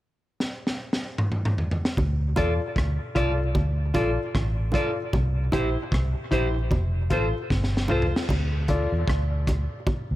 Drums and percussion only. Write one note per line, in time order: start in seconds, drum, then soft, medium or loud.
0.40 snare medium
0.67 snare medium
0.93 snare medium
1.18 mid tom medium
1.32 mid tom medium
1.45 mid tom medium
1.58 floor tom medium
1.71 floor tom loud
1.85 snare medium
1.97 kick loud
1.97 high bongo medium
2.36 kick medium
2.36 closed hi-hat medium
2.36 high bongo medium
2.76 kick loud
2.76 cross-stick loud
3.16 kick medium
3.16 cross-stick medium
3.16 closed hi-hat medium
3.55 kick loud
3.55 high bongo medium
3.94 kick medium
3.94 closed hi-hat medium
3.94 high bongo medium
4.35 kick loud
4.35 cross-stick loud
4.72 kick medium
4.72 closed hi-hat medium
4.72 low bongo medium
5.13 kick loud
5.13 high bongo medium
5.52 kick medium
5.52 closed hi-hat medium
5.52 high bongo medium
5.92 kick loud
5.92 cross-stick loud
6.32 kick medium
6.32 closed hi-hat medium
6.71 kick loud
6.71 high bongo medium
7.10 kick medium
7.10 closed hi-hat medium
7.10 high bongo medium
7.50 kick loud
7.50 snare medium
7.64 snare medium
7.77 snare medium
7.88 mid tom medium
7.88 low bongo medium
8.02 floor tom medium
8.16 snare medium
8.29 kick loud
8.29 crash medium
8.29 high bongo medium
8.68 kick medium
8.68 closed hi-hat medium
9.08 kick loud
9.08 cross-stick loud
9.47 kick loud
9.47 cross-stick medium
9.47 closed hi-hat medium
9.47 high bongo medium
9.87 kick loud
9.87 high bongo medium